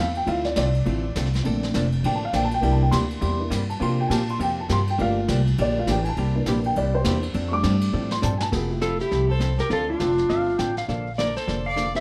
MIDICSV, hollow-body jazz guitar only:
0, 0, Header, 1, 2, 480
1, 0, Start_track
1, 0, Key_signature, -1, "major"
1, 0, Tempo, 294695
1, 448, Time_signature, 4, 2, 24, 8
1, 19549, End_track
2, 0, Start_track
2, 0, Title_t, "Hollow-body jazz guitar"
2, 0, Program_c, 0, 26
2, 434, Note_on_c, 0, 50, 48
2, 446, Note_on_c, 0, 69, 62
2, 447, Note_on_c, 0, 57, 56
2, 447, Note_on_c, 0, 65, 60
2, 450, Note_on_c, 0, 60, 60
2, 763, Note_off_c, 0, 50, 0
2, 769, Note_off_c, 0, 57, 0
2, 769, Note_off_c, 0, 69, 0
2, 770, Note_off_c, 0, 65, 0
2, 771, Note_off_c, 0, 60, 0
2, 916, Note_on_c, 0, 50, 78
2, 925, Note_on_c, 0, 57, 87
2, 929, Note_on_c, 0, 60, 91
2, 935, Note_on_c, 0, 65, 85
2, 944, Note_on_c, 0, 69, 86
2, 1101, Note_off_c, 0, 50, 0
2, 1106, Note_off_c, 0, 57, 0
2, 1107, Note_off_c, 0, 60, 0
2, 1111, Note_off_c, 0, 65, 0
2, 1115, Note_off_c, 0, 69, 0
2, 1395, Note_on_c, 0, 57, 63
2, 1401, Note_on_c, 0, 50, 53
2, 1407, Note_on_c, 0, 65, 57
2, 1411, Note_on_c, 0, 60, 56
2, 1411, Note_on_c, 0, 69, 61
2, 1723, Note_off_c, 0, 57, 0
2, 1726, Note_off_c, 0, 50, 0
2, 1729, Note_off_c, 0, 65, 0
2, 1731, Note_off_c, 0, 60, 0
2, 1731, Note_off_c, 0, 69, 0
2, 1893, Note_on_c, 0, 50, 73
2, 1894, Note_on_c, 0, 57, 86
2, 1899, Note_on_c, 0, 60, 88
2, 1905, Note_on_c, 0, 69, 90
2, 1910, Note_on_c, 0, 65, 89
2, 2069, Note_off_c, 0, 50, 0
2, 2070, Note_off_c, 0, 57, 0
2, 2072, Note_off_c, 0, 60, 0
2, 2075, Note_off_c, 0, 69, 0
2, 2078, Note_off_c, 0, 65, 0
2, 2370, Note_on_c, 0, 50, 50
2, 2371, Note_on_c, 0, 53, 49
2, 2375, Note_on_c, 0, 58, 58
2, 2378, Note_on_c, 0, 62, 60
2, 2381, Note_on_c, 0, 69, 63
2, 2690, Note_off_c, 0, 50, 0
2, 2691, Note_off_c, 0, 53, 0
2, 2693, Note_off_c, 0, 58, 0
2, 2694, Note_off_c, 0, 62, 0
2, 2696, Note_off_c, 0, 69, 0
2, 2848, Note_on_c, 0, 50, 77
2, 2854, Note_on_c, 0, 58, 80
2, 2856, Note_on_c, 0, 53, 92
2, 2863, Note_on_c, 0, 69, 79
2, 2865, Note_on_c, 0, 62, 101
2, 3026, Note_off_c, 0, 50, 0
2, 3030, Note_off_c, 0, 58, 0
2, 3031, Note_off_c, 0, 53, 0
2, 3034, Note_off_c, 0, 69, 0
2, 3035, Note_off_c, 0, 62, 0
2, 3343, Note_on_c, 0, 50, 59
2, 3351, Note_on_c, 0, 53, 63
2, 3357, Note_on_c, 0, 58, 58
2, 3360, Note_on_c, 0, 62, 65
2, 3365, Note_on_c, 0, 69, 63
2, 3657, Note_off_c, 0, 50, 0
2, 3661, Note_off_c, 0, 53, 0
2, 3664, Note_off_c, 0, 58, 0
2, 3665, Note_off_c, 0, 62, 0
2, 3668, Note_off_c, 0, 69, 0
2, 3797, Note_on_c, 0, 53, 90
2, 3800, Note_on_c, 0, 50, 76
2, 3806, Note_on_c, 0, 62, 81
2, 3807, Note_on_c, 0, 69, 96
2, 3813, Note_on_c, 0, 58, 84
2, 3981, Note_off_c, 0, 53, 0
2, 3982, Note_off_c, 0, 50, 0
2, 3986, Note_off_c, 0, 62, 0
2, 3986, Note_off_c, 0, 69, 0
2, 3989, Note_off_c, 0, 58, 0
2, 4271, Note_on_c, 0, 48, 53
2, 4271, Note_on_c, 0, 58, 53
2, 4274, Note_on_c, 0, 55, 57
2, 4279, Note_on_c, 0, 64, 60
2, 4280, Note_on_c, 0, 67, 60
2, 4600, Note_off_c, 0, 58, 0
2, 4601, Note_off_c, 0, 48, 0
2, 4602, Note_off_c, 0, 55, 0
2, 4605, Note_off_c, 0, 64, 0
2, 4605, Note_off_c, 0, 67, 0
2, 4756, Note_on_c, 0, 48, 83
2, 4759, Note_on_c, 0, 58, 89
2, 4760, Note_on_c, 0, 64, 85
2, 4764, Note_on_c, 0, 55, 79
2, 4775, Note_on_c, 0, 67, 80
2, 4940, Note_off_c, 0, 48, 0
2, 4942, Note_off_c, 0, 58, 0
2, 4942, Note_off_c, 0, 64, 0
2, 4944, Note_off_c, 0, 55, 0
2, 4950, Note_off_c, 0, 67, 0
2, 5226, Note_on_c, 0, 48, 54
2, 5232, Note_on_c, 0, 55, 61
2, 5235, Note_on_c, 0, 58, 58
2, 5241, Note_on_c, 0, 64, 59
2, 5249, Note_on_c, 0, 67, 67
2, 5558, Note_off_c, 0, 48, 0
2, 5561, Note_off_c, 0, 55, 0
2, 5562, Note_off_c, 0, 58, 0
2, 5565, Note_off_c, 0, 64, 0
2, 5569, Note_off_c, 0, 67, 0
2, 5703, Note_on_c, 0, 48, 67
2, 5706, Note_on_c, 0, 55, 73
2, 5707, Note_on_c, 0, 64, 84
2, 5712, Note_on_c, 0, 58, 81
2, 5720, Note_on_c, 0, 67, 75
2, 5894, Note_off_c, 0, 48, 0
2, 5895, Note_off_c, 0, 55, 0
2, 5896, Note_off_c, 0, 64, 0
2, 5898, Note_off_c, 0, 58, 0
2, 5902, Note_off_c, 0, 67, 0
2, 6185, Note_on_c, 0, 48, 55
2, 6190, Note_on_c, 0, 53, 53
2, 6193, Note_on_c, 0, 65, 62
2, 6196, Note_on_c, 0, 58, 60
2, 6210, Note_on_c, 0, 67, 62
2, 6517, Note_off_c, 0, 48, 0
2, 6520, Note_off_c, 0, 53, 0
2, 6521, Note_off_c, 0, 65, 0
2, 6523, Note_off_c, 0, 58, 0
2, 6530, Note_off_c, 0, 67, 0
2, 6674, Note_on_c, 0, 48, 74
2, 6681, Note_on_c, 0, 53, 80
2, 6691, Note_on_c, 0, 58, 77
2, 6693, Note_on_c, 0, 65, 82
2, 6698, Note_on_c, 0, 67, 94
2, 6859, Note_off_c, 0, 48, 0
2, 6863, Note_off_c, 0, 53, 0
2, 6868, Note_off_c, 0, 58, 0
2, 6869, Note_off_c, 0, 65, 0
2, 6871, Note_off_c, 0, 67, 0
2, 7149, Note_on_c, 0, 48, 53
2, 7158, Note_on_c, 0, 53, 62
2, 7164, Note_on_c, 0, 65, 54
2, 7165, Note_on_c, 0, 58, 58
2, 7175, Note_on_c, 0, 67, 60
2, 7479, Note_off_c, 0, 48, 0
2, 7484, Note_off_c, 0, 53, 0
2, 7487, Note_off_c, 0, 58, 0
2, 7487, Note_off_c, 0, 65, 0
2, 7492, Note_off_c, 0, 67, 0
2, 7633, Note_on_c, 0, 48, 76
2, 7646, Note_on_c, 0, 53, 83
2, 7650, Note_on_c, 0, 58, 86
2, 7653, Note_on_c, 0, 67, 91
2, 7656, Note_on_c, 0, 65, 74
2, 7818, Note_off_c, 0, 48, 0
2, 7825, Note_off_c, 0, 53, 0
2, 7827, Note_off_c, 0, 58, 0
2, 7828, Note_off_c, 0, 67, 0
2, 7830, Note_off_c, 0, 65, 0
2, 8114, Note_on_c, 0, 50, 51
2, 8116, Note_on_c, 0, 58, 55
2, 8119, Note_on_c, 0, 62, 67
2, 8123, Note_on_c, 0, 53, 51
2, 8126, Note_on_c, 0, 67, 64
2, 8442, Note_off_c, 0, 50, 0
2, 8443, Note_off_c, 0, 58, 0
2, 8444, Note_off_c, 0, 62, 0
2, 8446, Note_off_c, 0, 53, 0
2, 8447, Note_off_c, 0, 67, 0
2, 8603, Note_on_c, 0, 50, 82
2, 8613, Note_on_c, 0, 53, 79
2, 8616, Note_on_c, 0, 62, 80
2, 8618, Note_on_c, 0, 58, 86
2, 8630, Note_on_c, 0, 67, 92
2, 8783, Note_off_c, 0, 50, 0
2, 8788, Note_off_c, 0, 53, 0
2, 8790, Note_off_c, 0, 58, 0
2, 8790, Note_off_c, 0, 62, 0
2, 8797, Note_off_c, 0, 67, 0
2, 9098, Note_on_c, 0, 50, 53
2, 9101, Note_on_c, 0, 53, 62
2, 9103, Note_on_c, 0, 58, 64
2, 9107, Note_on_c, 0, 67, 67
2, 9109, Note_on_c, 0, 62, 61
2, 9413, Note_off_c, 0, 50, 0
2, 9415, Note_off_c, 0, 53, 0
2, 9416, Note_off_c, 0, 58, 0
2, 9418, Note_off_c, 0, 67, 0
2, 9419, Note_off_c, 0, 62, 0
2, 9574, Note_on_c, 0, 50, 78
2, 9577, Note_on_c, 0, 53, 91
2, 9583, Note_on_c, 0, 58, 84
2, 9584, Note_on_c, 0, 67, 86
2, 9585, Note_on_c, 0, 62, 84
2, 9748, Note_off_c, 0, 50, 0
2, 9750, Note_off_c, 0, 53, 0
2, 9753, Note_off_c, 0, 58, 0
2, 9754, Note_off_c, 0, 62, 0
2, 9754, Note_off_c, 0, 67, 0
2, 10061, Note_on_c, 0, 55, 55
2, 10062, Note_on_c, 0, 48, 52
2, 10067, Note_on_c, 0, 58, 59
2, 10072, Note_on_c, 0, 64, 63
2, 10076, Note_on_c, 0, 67, 66
2, 10374, Note_off_c, 0, 55, 0
2, 10375, Note_off_c, 0, 48, 0
2, 10377, Note_off_c, 0, 58, 0
2, 10380, Note_off_c, 0, 64, 0
2, 10382, Note_off_c, 0, 67, 0
2, 10535, Note_on_c, 0, 48, 81
2, 10542, Note_on_c, 0, 55, 86
2, 10545, Note_on_c, 0, 58, 79
2, 10553, Note_on_c, 0, 67, 95
2, 10557, Note_on_c, 0, 64, 96
2, 10709, Note_off_c, 0, 48, 0
2, 10712, Note_off_c, 0, 55, 0
2, 10713, Note_off_c, 0, 58, 0
2, 10717, Note_off_c, 0, 67, 0
2, 10719, Note_off_c, 0, 64, 0
2, 11018, Note_on_c, 0, 48, 60
2, 11020, Note_on_c, 0, 55, 59
2, 11032, Note_on_c, 0, 58, 59
2, 11033, Note_on_c, 0, 64, 55
2, 11036, Note_on_c, 0, 67, 59
2, 11333, Note_off_c, 0, 48, 0
2, 11334, Note_off_c, 0, 55, 0
2, 11340, Note_off_c, 0, 58, 0
2, 11340, Note_off_c, 0, 64, 0
2, 11341, Note_off_c, 0, 67, 0
2, 11480, Note_on_c, 0, 55, 82
2, 11484, Note_on_c, 0, 58, 96
2, 11487, Note_on_c, 0, 64, 82
2, 11490, Note_on_c, 0, 48, 86
2, 11499, Note_on_c, 0, 67, 91
2, 11661, Note_off_c, 0, 55, 0
2, 11662, Note_off_c, 0, 58, 0
2, 11664, Note_off_c, 0, 64, 0
2, 11666, Note_off_c, 0, 48, 0
2, 11670, Note_off_c, 0, 67, 0
2, 11957, Note_on_c, 0, 53, 59
2, 11967, Note_on_c, 0, 62, 58
2, 11968, Note_on_c, 0, 60, 61
2, 11977, Note_on_c, 0, 69, 57
2, 12281, Note_off_c, 0, 53, 0
2, 12287, Note_off_c, 0, 60, 0
2, 12287, Note_off_c, 0, 62, 0
2, 12292, Note_off_c, 0, 69, 0
2, 12430, Note_on_c, 0, 53, 86
2, 12435, Note_on_c, 0, 62, 91
2, 12438, Note_on_c, 0, 60, 89
2, 12442, Note_on_c, 0, 69, 91
2, 12615, Note_off_c, 0, 53, 0
2, 12618, Note_off_c, 0, 62, 0
2, 12619, Note_off_c, 0, 60, 0
2, 12621, Note_off_c, 0, 69, 0
2, 12916, Note_on_c, 0, 53, 60
2, 12924, Note_on_c, 0, 60, 68
2, 12934, Note_on_c, 0, 69, 61
2, 12936, Note_on_c, 0, 62, 60
2, 13241, Note_off_c, 0, 53, 0
2, 13245, Note_off_c, 0, 60, 0
2, 13250, Note_off_c, 0, 69, 0
2, 13251, Note_off_c, 0, 62, 0
2, 13383, Note_on_c, 0, 53, 79
2, 13388, Note_on_c, 0, 62, 78
2, 13393, Note_on_c, 0, 60, 84
2, 13395, Note_on_c, 0, 69, 83
2, 13572, Note_off_c, 0, 53, 0
2, 13574, Note_off_c, 0, 62, 0
2, 13577, Note_off_c, 0, 60, 0
2, 13578, Note_off_c, 0, 69, 0
2, 13875, Note_on_c, 0, 53, 49
2, 13883, Note_on_c, 0, 57, 56
2, 13883, Note_on_c, 0, 64, 54
2, 13885, Note_on_c, 0, 60, 56
2, 13887, Note_on_c, 0, 69, 52
2, 14201, Note_off_c, 0, 53, 0
2, 14205, Note_off_c, 0, 57, 0
2, 14205, Note_off_c, 0, 64, 0
2, 14206, Note_off_c, 0, 60, 0
2, 14207, Note_off_c, 0, 69, 0
2, 14355, Note_on_c, 0, 57, 76
2, 14357, Note_on_c, 0, 60, 78
2, 14360, Note_on_c, 0, 53, 70
2, 14370, Note_on_c, 0, 64, 82
2, 14373, Note_on_c, 0, 69, 85
2, 14538, Note_off_c, 0, 57, 0
2, 14539, Note_off_c, 0, 60, 0
2, 14541, Note_off_c, 0, 53, 0
2, 14545, Note_off_c, 0, 64, 0
2, 14547, Note_off_c, 0, 69, 0
2, 14838, Note_on_c, 0, 53, 54
2, 14846, Note_on_c, 0, 57, 57
2, 14855, Note_on_c, 0, 64, 54
2, 14855, Note_on_c, 0, 69, 61
2, 14858, Note_on_c, 0, 60, 49
2, 15163, Note_off_c, 0, 53, 0
2, 15167, Note_off_c, 0, 57, 0
2, 15171, Note_off_c, 0, 64, 0
2, 15171, Note_off_c, 0, 69, 0
2, 15173, Note_off_c, 0, 60, 0
2, 15304, Note_on_c, 0, 57, 72
2, 15310, Note_on_c, 0, 53, 71
2, 15312, Note_on_c, 0, 60, 83
2, 15316, Note_on_c, 0, 64, 77
2, 15322, Note_on_c, 0, 69, 80
2, 15493, Note_off_c, 0, 57, 0
2, 15496, Note_off_c, 0, 53, 0
2, 15497, Note_off_c, 0, 60, 0
2, 15499, Note_off_c, 0, 64, 0
2, 15502, Note_off_c, 0, 69, 0
2, 15788, Note_on_c, 0, 50, 48
2, 15800, Note_on_c, 0, 57, 54
2, 15801, Note_on_c, 0, 60, 60
2, 15801, Note_on_c, 0, 65, 57
2, 15806, Note_on_c, 0, 69, 54
2, 16118, Note_off_c, 0, 50, 0
2, 16124, Note_off_c, 0, 57, 0
2, 16125, Note_off_c, 0, 60, 0
2, 16125, Note_off_c, 0, 65, 0
2, 16127, Note_off_c, 0, 69, 0
2, 16289, Note_on_c, 0, 57, 85
2, 16293, Note_on_c, 0, 65, 89
2, 16294, Note_on_c, 0, 50, 78
2, 16295, Note_on_c, 0, 60, 82
2, 16303, Note_on_c, 0, 69, 91
2, 16467, Note_off_c, 0, 57, 0
2, 16468, Note_off_c, 0, 65, 0
2, 16469, Note_off_c, 0, 50, 0
2, 16469, Note_off_c, 0, 60, 0
2, 16473, Note_off_c, 0, 69, 0
2, 16770, Note_on_c, 0, 50, 48
2, 16774, Note_on_c, 0, 57, 53
2, 16778, Note_on_c, 0, 60, 51
2, 16780, Note_on_c, 0, 69, 59
2, 16783, Note_on_c, 0, 65, 53
2, 17090, Note_off_c, 0, 50, 0
2, 17092, Note_off_c, 0, 57, 0
2, 17094, Note_off_c, 0, 60, 0
2, 17095, Note_off_c, 0, 69, 0
2, 17097, Note_off_c, 0, 65, 0
2, 17240, Note_on_c, 0, 50, 72
2, 17245, Note_on_c, 0, 57, 69
2, 17252, Note_on_c, 0, 60, 87
2, 17252, Note_on_c, 0, 65, 86
2, 17252, Note_on_c, 0, 69, 85
2, 17422, Note_off_c, 0, 50, 0
2, 17425, Note_off_c, 0, 57, 0
2, 17429, Note_off_c, 0, 60, 0
2, 17429, Note_off_c, 0, 65, 0
2, 17429, Note_off_c, 0, 69, 0
2, 17728, Note_on_c, 0, 50, 45
2, 17733, Note_on_c, 0, 53, 53
2, 17734, Note_on_c, 0, 62, 54
2, 17735, Note_on_c, 0, 58, 54
2, 17747, Note_on_c, 0, 69, 62
2, 18050, Note_off_c, 0, 50, 0
2, 18053, Note_off_c, 0, 53, 0
2, 18053, Note_off_c, 0, 58, 0
2, 18053, Note_off_c, 0, 62, 0
2, 18060, Note_off_c, 0, 69, 0
2, 18216, Note_on_c, 0, 50, 81
2, 18229, Note_on_c, 0, 53, 81
2, 18233, Note_on_c, 0, 58, 82
2, 18236, Note_on_c, 0, 62, 81
2, 18243, Note_on_c, 0, 69, 89
2, 18391, Note_off_c, 0, 50, 0
2, 18398, Note_off_c, 0, 53, 0
2, 18400, Note_off_c, 0, 58, 0
2, 18402, Note_off_c, 0, 62, 0
2, 18405, Note_off_c, 0, 69, 0
2, 18685, Note_on_c, 0, 50, 53
2, 18689, Note_on_c, 0, 53, 50
2, 18695, Note_on_c, 0, 58, 57
2, 18696, Note_on_c, 0, 69, 61
2, 18699, Note_on_c, 0, 62, 61
2, 19009, Note_off_c, 0, 50, 0
2, 19012, Note_off_c, 0, 53, 0
2, 19014, Note_off_c, 0, 58, 0
2, 19015, Note_off_c, 0, 69, 0
2, 19016, Note_off_c, 0, 62, 0
2, 19158, Note_on_c, 0, 50, 70
2, 19159, Note_on_c, 0, 53, 75
2, 19166, Note_on_c, 0, 58, 67
2, 19168, Note_on_c, 0, 62, 77
2, 19176, Note_on_c, 0, 69, 78
2, 19343, Note_off_c, 0, 50, 0
2, 19343, Note_off_c, 0, 53, 0
2, 19347, Note_off_c, 0, 58, 0
2, 19348, Note_off_c, 0, 62, 0
2, 19352, Note_off_c, 0, 69, 0
2, 19549, End_track
0, 0, End_of_file